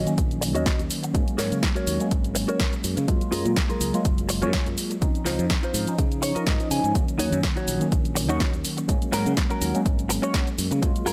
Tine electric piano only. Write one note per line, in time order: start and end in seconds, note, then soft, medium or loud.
0.06 1.12 D#3 medium
0.06 1.12 F#3 medium
0.06 1.12 A#3 medium
0.06 1.12 C#4 medium
1.13 1.97 F#3 loud
1.13 1.97 G#3 medium
1.13 1.97 A#3 medium
1.13 1.97 C#4 loud
1.99 3.05 F#3 medium
1.99 3.05 G#3 medium
1.99 3.06 A#3 medium
1.99 3.06 C#4 medium
3.07 3.90 F#3 loud
3.07 3.91 G#3 medium
3.07 3.91 A#3 medium
3.07 3.91 F4 loud
3.93 4.99 F#3 medium
3.93 4.99 G#3 medium
3.93 4.99 A#3 medium
3.93 4.99 F4 medium
5.01 5.84 F3 loud
5.01 5.84 C4 medium
5.01 5.84 C#4 medium
5.01 5.85 D#4 loud
5.87 6.57 F3 medium
5.87 6.58 C#4 medium
5.87 6.58 D#4 medium
6.60 6.92 F3 medium
6.60 6.93 C#4 medium
6.60 6.93 D#4 medium
6.94 7.77 D#3 medium
6.94 7.78 F#3 medium
6.94 7.78 A#3 medium
6.94 7.78 C#4 loud
7.80 8.86 D#3 medium
7.80 8.86 F#3 medium
7.80 8.86 A#3 medium
7.80 8.87 C#4 medium
8.88 9.71 F#3 loud
8.88 9.71 G#3 medium
8.88 9.71 A#3 medium
8.88 9.72 C#4 loud
9.74 10.79 F#3 medium
9.74 10.80 G#3 medium
9.74 10.80 A#3 medium
9.74 10.80 C#4 medium
10.82 11.13 F#3 loud
10.82 11.13 G#3 medium
10.82 11.13 A#3 medium
10.82 11.13 F4 loud